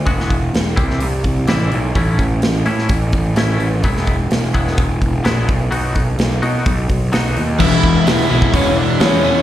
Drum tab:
CC |----------------|----------------|----------------|----------------|
HH |o-o-o-o-o-o-o-o-|o-o-o-o-o-o-o-o-|o-o-o-o-o-o-o-o-|o-o-o-o-o-o-o-o-|
SD |-o--o--o----o---|----o--o----o---|-o--o--o----o---|----o-------o---|
BD |o-o---o---o-----|o-o-----o-o-----|o-o---o-o-o---o-|--o-----o-o-----|

CC |x---------------|
HH |----o---o---o---|
SD |----o-------o---|
BD |o-o----oo-------|